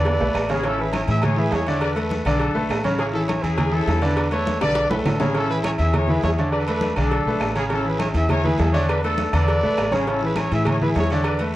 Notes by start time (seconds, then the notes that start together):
Already playing: E2 D3 D4 A4 B4 D5
0.05 cowbell, low timbale, low agogo, long guiro
0.20 B1 A3 A4 B4, high conga, low timbale
0.35 A1, cowbell, high conga, low timbale, low agogo, short guiro, claves
0.49 C#3 C#4 G#4 C#5, cowbell, low timbale, low agogo, short guiro
0.64 C#3 C#4 E4 A4 C#5, cowbell, high conga, low agogo, long guiro
0.79 E3 E4 G#4 B4, high conga
0.93 C#5, cowbell, high conga, low timbale, low agogo, short guiro, claves
1.08 A2 E3 E4 G#4 E5, high conga, low agogo, short guiro
1.22 E4 G#4 C#5, cowbell, high conga, low conga, low agogo, long guiro, claves
1.37 E3 E4 G#4 B4, high conga
1.52 E2 C#5, cowbell, high conga, low timbale, low agogo, short guiro
1.67 D3 D4 C#5 D5, cowbell, short guiro
1.81 A4 B4 D5, cowbell, low agogo, long guiro, claves
1.96 A3 A4 B4, cowbell, high conga, low agogo
2.10 cowbell, high conga, low timbale, short guiro
2.25 B1 D3 D4 A4 D5, cowbell, low agogo, short guiro, claves
2.39 cowbell, high conga, low agogo, long guiro
2.55 B1 A3 A4 B4, high conga
2.69 A1, cowbell, high conga, low timbale, low agogo, short guiro, claves
2.84 C#3 C#4 C#5, cowbell, high conga, low agogo, short guiro
2.99 C#3 C#4 E4 G#4 C#5, cowbell, high conga, low agogo, long guiro
3.13 E3 E4 G#4 A4, high conga
3.27 C#5, cowbell, high conga, low timbale, low agogo, short guiro, claves
3.42 E2 E3 C#4 E4 G#4, high conga, low agogo, short guiro
3.58 cowbell, high conga, low conga, low agogo, long guiro, claves
3.72 E3 C#4 E4 G#4 A4, high conga
3.87 E2, cowbell, high conga, low timbale, low agogo, short guiro
4.01 D3 D4 B4 D5, cowbell, short guiro
4.16 cowbell, low agogo, long guiro, claves
4.31 A3 A4 B4 C#5, cowbell, high conga, low agogo
4.46 cowbell, high conga, low timbale, short guiro
4.60 B1 D3 D4 A4 B4 D5, cowbell, high bongo, low agogo, short guiro, claves
4.75 cowbell, high bongo, high conga, low agogo, long guiro
4.89 B1 A3 A4 B4, high conga, high timbale
5.05 A1 D4 A4, cowbell, low bongo, low conga, high timbale, low agogo, short guiro, claves
5.20 C#3 C#4 G#4 C#5, cowbell, low bongo, low conga, low timbale, low agogo, short guiro
5.34 C#3 C#4 E4 A4 C#5, cowbell, high conga, low agogo, long guiro
5.50 E3 E4 G#4 B4, high conga
5.64 C#5, cowbell, high conga, low timbale, low agogo, short guiro, claves
5.78 E2 E3 E4 G#4 E5, high conga, low agogo, short guiro
5.93 E4 G#4 C#5, cowbell, high conga, low conga, low agogo, long guiro, claves
6.08 E3 E4 G#4 B4, high conga, low conga
6.22 E2 C#5, cowbell, high conga, low timbale, low agogo, short guiro
6.36 D3 D4 C#5 D5, cowbell, short guiro
6.51 A4 B4 D5, cowbell, high conga, low agogo, long guiro, claves
6.66 A3 D4 A4 B4, cowbell, high conga, low agogo
6.81 cowbell, high conga, low timbale, short guiro
6.96 B1 D3 D4 A4 D5, cowbell, high conga, low agogo, short guiro, claves
7.11 cowbell, high conga, low agogo, long guiro
7.25 B1 A3 A4 B4, high conga
7.40 A1, cowbell, high conga, low timbale, low agogo, short guiro, claves
7.56 C#3 C#4 G#4 C#5, cowbell, low agogo, short guiro
7.70 C#3 C#4 E4 A4 C#5, cowbell, high conga, low agogo, long guiro
7.85 E3 E4 G#4 B4, high conga
7.99 C#5, cowbell, high conga, low timbale, low agogo, short guiro, claves
8.14 E2 E3 E4 G#4 E5, high conga, low agogo, short guiro
8.29 E4 G#4 C#5, cowbell, high conga, low conga, low agogo, long guiro, claves
8.44 E3 E4 G#4 B4, high conga, low conga
8.58 E2 A4, cowbell, high conga, low timbale, low agogo, short guiro
8.73 D3 D4 C#5 D5, cowbell, short guiro
8.88 D4 B4, cowbell, high conga, low agogo, long guiro, claves
9.03 A3 D4 A4 B4, cowbell, high conga, low agogo
9.18 cowbell, high conga, low timbale, short guiro
9.33 E2 D3 D4 A4 B4 D5, cowbell, high conga, low agogo, short guiro, claves
9.48 cowbell, high conga, low agogo, long guiro
9.62 B1 A3 A4 B4, high conga
9.77 A1, cowbell, high conga, low timbale, low agogo, short guiro, claves
9.91 C#3 C#4 G#4 C#5, cowbell, high conga, low agogo, short guiro
10.07 C#3 C#4 E4 A4 C#5, cowbell, high conga, low agogo, long guiro
10.21 E3 E4 G#4 B4, high conga
10.36 C#5, cowbell, high conga, low timbale, low agogo, short guiro, claves
10.51 A2 E3 E4 G#4 E5, low agogo, short guiro
10.65 E4 G#4 C#5, cowbell, high conga, low conga, low agogo, long guiro, claves
10.81 E3 E4 G#4 B4, high conga, low conga
10.95 E2 C#5, cowbell, high conga, low timbale, low agogo, short guiro
11.10 D3 D4 C#5 D5, cowbell, short guiro
11.24 A4 B4 D5, cowbell, low agogo, long guiro, claves
11.39 A3 A4 B4, cowbell, high conga, low agogo